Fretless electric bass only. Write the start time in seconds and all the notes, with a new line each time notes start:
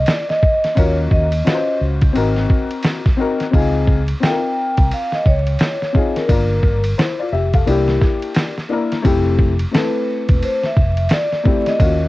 0.77 D#2
1.11 D#2
1.81 C#2
2.16 G#1
3.54 C#2
4.78 C2
5.26 C#2
6.29 G1
6.63 G1
7.32 F1
7.67 C2
9.05 F1
10.29 E1
10.77 F1
11.80 D#2